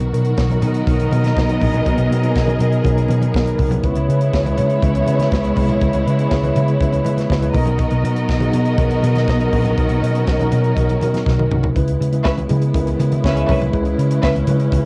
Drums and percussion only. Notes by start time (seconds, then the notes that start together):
0.01 muted conga
0.14 closed hi-hat
0.25 closed hi-hat
0.37 kick, snare, muted conga
0.50 closed hi-hat, high conga
0.62 closed hi-hat, high conga, low conga
0.74 closed hi-hat
0.87 kick, closed hi-hat, high conga
0.99 closed hi-hat, muted conga
1.11 closed hi-hat, high conga
1.24 snare, closed hi-hat, high conga
1.36 kick, snare, muted conga
1.49 closed hi-hat, muted conga
1.61 kick, open hi-hat, low conga
1.73 closed hi-hat, low conga
1.86 kick, closed hi-hat, muted conga
1.98 closed hi-hat
2.12 closed hi-hat
2.23 closed hi-hat
2.35 kick, snare, muted conga
2.47 closed hi-hat, muted conga, high conga
2.59 closed hi-hat, high conga, low conga
2.72 closed hi-hat
2.84 kick, closed hi-hat, muted conga, high conga
2.98 closed hi-hat
3.09 closed hi-hat, high conga
3.22 closed hi-hat, high conga
3.34 kick, snare, muted conga
3.47 closed hi-hat
3.58 kick, open hi-hat, low conga
3.71 closed hi-hat, low conga
3.83 kick, closed hi-hat, muted conga
3.95 closed hi-hat
4.10 closed hi-hat
4.21 closed hi-hat
4.33 kick, snare
4.45 closed hi-hat, high conga
4.57 closed hi-hat, high conga, low conga
4.70 closed hi-hat
4.83 kick, closed hi-hat, muted conga, high conga
4.95 closed hi-hat, muted conga
5.06 closed hi-hat, high conga
5.19 snare, closed hi-hat, high conga
5.31 kick, snare, muted conga
5.44 closed hi-hat, muted conga
5.56 kick, open hi-hat, low conga
5.69 closed hi-hat, low conga
5.81 kick, closed hi-hat, muted conga
5.93 closed hi-hat, muted conga
6.08 closed hi-hat
6.19 closed hi-hat
6.31 kick, snare, muted conga
6.44 closed hi-hat, high conga
6.55 closed hi-hat, high conga, low conga
6.68 closed hi-hat
6.81 kick, closed hi-hat, high conga
6.93 closed hi-hat, muted conga
7.05 closed hi-hat, high conga
7.17 snare, closed hi-hat, high conga
7.30 kick, snare, muted conga
7.42 closed hi-hat, muted conga
7.54 kick, open hi-hat, low conga
7.66 closed hi-hat, low conga
7.78 kick, closed hi-hat, muted conga
7.91 closed hi-hat, muted conga
8.05 closed hi-hat
8.17 closed hi-hat
8.29 kick, snare
8.40 closed hi-hat, muted conga, high conga
8.52 closed hi-hat, high conga, low conga
8.65 closed hi-hat
8.78 kick, closed hi-hat, high conga
8.91 closed hi-hat, muted conga
9.02 closed hi-hat, high conga
9.15 snare, closed hi-hat, high conga
9.28 kick, snare, muted conga
9.40 closed hi-hat, muted conga
9.53 kick, open hi-hat, low conga
9.65 closed hi-hat, low conga
9.77 kick, closed hi-hat
9.89 closed hi-hat, muted conga
10.04 closed hi-hat
10.15 closed hi-hat
10.27 kick, snare, muted conga
10.39 closed hi-hat, muted conga, high conga
10.51 closed hi-hat, high conga, low conga
10.64 closed hi-hat
10.77 kick, closed hi-hat, high conga
10.89 closed hi-hat, muted conga
11.01 closed hi-hat, high conga
11.14 snare, closed hi-hat, high conga
11.26 kick, snare
11.39 high tom, muted conga
11.51 mid tom, low conga
11.63 floor tom, low conga
11.76 kick, closed hi-hat, muted conga
11.88 closed hi-hat
12.02 closed hi-hat
12.13 closed hi-hat
12.25 kick, snare
12.38 closed hi-hat, muted conga, high conga
12.49 closed hi-hat, high conga, low conga
12.62 closed hi-hat
12.74 kick, closed hi-hat, high conga
12.87 closed hi-hat, muted conga
12.99 closed hi-hat, high conga
13.12 closed hi-hat, high conga
13.24 kick, snare
13.37 closed hi-hat, muted conga
13.49 kick, open hi-hat, low conga
13.62 closed hi-hat, low conga
13.73 kick, closed hi-hat, muted conga
13.85 closed hi-hat, muted conga
13.99 closed hi-hat
14.11 closed hi-hat
14.23 kick, snare, muted conga
14.35 closed hi-hat, high conga
14.47 closed hi-hat, high conga, low conga
14.60 closed hi-hat
14.72 kick, closed hi-hat, muted conga, high conga